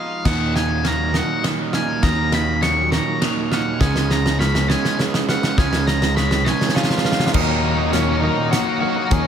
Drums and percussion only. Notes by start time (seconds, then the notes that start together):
0.25 kick, snare, crash
0.56 snare
0.85 snare, ride
1.14 snare
1.44 snare, ride
1.73 snare
2.03 kick, snare, ride
2.32 snare, ride
2.63 snare, ride
2.92 snare
3.22 snare, ride
3.52 snare
3.81 kick, snare
3.96 snare
4.11 snare
4.26 snare
4.41 snare
4.55 snare
4.70 snare
4.85 snare
4.99 snare
5.14 snare
5.29 snare
5.43 snare
5.58 kick, snare
5.73 snare
5.88 snare
6.02 snare
6.17 snare
6.31 snare
6.46 snare
6.61 snare
6.69 snare
6.76 snare
6.83 snare
6.90 snare
6.98 snare
7.05 snare
7.12 snare
7.19 snare
7.27 snare
7.34 kick, crash
7.93 snare, closed hi-hat
8.53 snare, closed hi-hat
9.11 kick, closed hi-hat